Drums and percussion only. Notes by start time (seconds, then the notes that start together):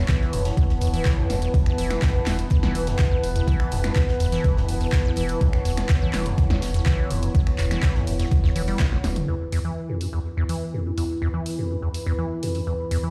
0.08 kick, snare, clap, closed hi-hat
0.21 snare
0.33 closed hi-hat, open hi-hat
0.45 snare, closed hi-hat
0.57 kick, closed hi-hat
0.69 snare
0.81 closed hi-hat, open hi-hat
0.94 open hi-hat
1.05 kick, snare, clap, closed hi-hat
1.30 snare, closed hi-hat, open hi-hat
1.42 closed hi-hat
1.54 kick, closed hi-hat
1.66 finger snap, closed hi-hat
1.78 closed hi-hat, open hi-hat
1.91 finger snap, snare, closed hi-hat
2.02 kick, snare, clap, closed hi-hat
2.15 closed hi-hat
2.26 finger snap, snare, clap, closed hi-hat, open hi-hat
2.39 closed hi-hat
2.50 kick, closed hi-hat
2.63 snare
2.75 closed hi-hat, open hi-hat
2.87 snare, closed hi-hat
2.99 kick, snare, clap, closed hi-hat
3.23 closed hi-hat, open hi-hat
3.36 closed hi-hat
3.48 kick, closed hi-hat
3.60 finger snap, closed hi-hat
3.71 closed hi-hat, open hi-hat
3.84 finger snap, snare, closed hi-hat
3.96 kick, snare, clap, closed hi-hat
4.08 snare
4.20 closed hi-hat, open hi-hat
4.32 snare, closed hi-hat
4.44 kick, closed hi-hat
4.57 snare
4.69 closed hi-hat, open hi-hat
4.81 open hi-hat
4.92 kick, snare, clap, closed hi-hat
5.16 closed hi-hat, open hi-hat
5.29 closed hi-hat
5.41 kick, closed hi-hat
5.53 finger snap, closed hi-hat
5.65 closed hi-hat, open hi-hat
5.77 finger snap, snare, closed hi-hat
5.89 kick, snare, clap, closed hi-hat
6.02 closed hi-hat
6.13 finger snap, snare, clap, closed hi-hat, open hi-hat
6.26 closed hi-hat
6.38 kick, closed hi-hat
6.50 snare
6.62 snare, closed hi-hat, open hi-hat
6.74 snare, closed hi-hat
6.86 kick, snare, clap, closed hi-hat
7.11 closed hi-hat, open hi-hat
7.23 closed hi-hat
7.35 kick, closed hi-hat
7.47 finger snap, closed hi-hat
7.58 clap, closed hi-hat, open hi-hat
7.71 finger snap, snare, closed hi-hat
7.82 kick, snare, clap, closed hi-hat
7.95 snare
8.07 closed hi-hat, open hi-hat
8.19 snare, closed hi-hat
8.31 kick, closed hi-hat
8.44 snare
8.56 open hi-hat
8.68 open hi-hat
8.79 kick, snare, clap, closed hi-hat
8.92 snare
9.04 snare, closed hi-hat, open hi-hat, high tom
9.16 closed hi-hat, mid tom
9.52 open hi-hat
10.01 open hi-hat
10.49 open hi-hat
10.98 open hi-hat
11.46 open hi-hat
11.94 open hi-hat
12.43 open hi-hat
12.55 open hi-hat
12.91 open hi-hat